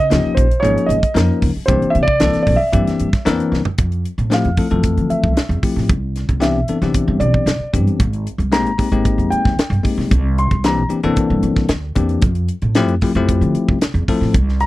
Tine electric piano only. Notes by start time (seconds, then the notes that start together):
0.10 F3 A#3 C#4 D#4 G4
0.63 F3 A#3 C#4 D#4 G#4
1.14 F3 A#3 C#4 D#4 A#4
1.68 E3 A#3 C4 D4 G4
2.20 E3 A#3 C4 D4 A4
2.72 E3 A#3 C4 D4 G4
3.25 E3 A#3 C4 D4 A#4
4.30 F3 A3 C4 E4 G4
4.58 F3 A3 C4 E4 A4
4.71 E3 F3 A3 C4 A4
5.63 F3 A3 C4 E4 G4
6.40 E3 B3 C4 D4 G4
6.69 E3 B3 C4 D4 A4
6.83 E3 B3 C4 D4 G4
7.73 E3 B3 C4 D4 G4
8.52 G#3 A#3 C4 D#4 G4
8.78 G#3 A#3 C4 D#4 G4
8.92 G#3 A#3 C4 D#4 G4
9.83 G#3 A#3 C4 D#4 G4
10.64 E3 A#3 C4 D4 G4
10.89 E3 A#3 C4 D4 G4
11.04 E3 A#3 C4 D4 A4
11.95 E3 A#3 C4 D4 G4
12.76 F3 A3 C4 E4 G4
13.02 F3 A3 C4 E4 G4
13.16 F3 A3 C4 E4 G4
14.09 F3 A3 C4 E4 A4